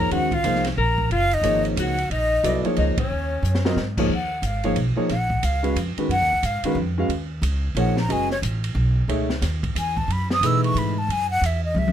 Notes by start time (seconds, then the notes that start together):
Already playing: D#4 G#4 C#5 A#5
0.11 D#2 D#3 G#3 C#4 F#4 C5 F#5, ride
0.31 F4 F5, kick, ride
0.44 C2 F3 A#3 D#4 G#4 C5, hi-hat pedal, ride
0.55 snare
0.64 snare, ride
0.77 A#1 A#4 A#5
0.98 kick
1.10 F#1 F4 F5, ride
1.31 D#4 D#5, ride
1.42 G#1 F3 A#3 D#4 G#4 C#5, hi-hat pedal, ride
1.65 ride
1.76 C#2 F#4 F#5, hi-hat pedal, ride
1.98 ride
2.10 A#1 D#4 D#5, ride
2.44 C2 F#3 B3 E4 A4 D5, hi-hat pedal, ride
2.64 F3 A#3 D#4 G#4 C#5, muted upright bass stroke, ride
2.77 C#2 D#4 D#5, ride
2.97 C#4 C#5, muted upright bass stroke, kick, ride
3.11 D#2
3.42 F#2, hi-hat pedal
3.55 snare
3.65 F#3 C4 F4 A#4 D#5, snare
3.76 G#2, snare
3.98 F3 A#3 D#4 G#4 C#5, kick, crash
4.09 D#2
4.15 F#5
4.42 G#1 F5, hi-hat pedal, ride
4.64 F3 A#3 D#4 G#4 C#5, ride
4.76 B1, ride
4.96 F3 A#3 D#4 G#4 C#5, muted upright bass stroke
5.09 A#1 F#5, snare, ride
5.30 kick
5.43 C#2 F5, hi-hat pedal, ride
5.63 G#3 C#4 F#4 B4 F5, ride
5.76 F2, hi-hat pedal, ride
5.97 D#3 G#3 C#4 F#4 B4, muted upright bass stroke, ride
6.09 F#2 F#5, ride
6.21 D#2
6.32 C#2
6.43 G#2 F5, hi-hat pedal, ride
6.63 D#3 G#3 C#4 F#4 B4, muted upright bass stroke, ride
6.75 F2
6.98 G#3 C#4 F#4 B4 F5
7.08 D#2, ride
7.42 C#2, hi-hat pedal, ride
7.75 A#1 F3 A#3 D#4 G#4 C#5, ride
7.79 F#5
7.97 A#5, snare
8.08 F#1 G#3 C#4 F#4 B4 D#5 G#5, ride
8.30 C#5, snare
8.42 A1, hi-hat pedal, ride
8.64 ride
8.75 B1
9.08 C#2 A3 D#4 G#4 C#5 E5, ride
9.30 snare
9.42 D#2, snare, hi-hat pedal, ride
9.63 kick, ride
9.75 E2 G#5, hi-hat pedal, ride
9.97 A5, kick
10.08 F#2, ride
10.12 B5
10.30 D#6, snare
10.41 B2 E3 A3 D#4 G#4 B4, hi-hat pedal, ride
10.46 E6
10.64 C#6, ride
10.75 G#2 B5, ride
10.98 A5
11.08 F#2 G#5, ride
11.31 F#5
11.41 E2, hi-hat pedal, ride
11.46 E5
11.64 D#5
11.75 C#2 E5, high tom
11.88 high tom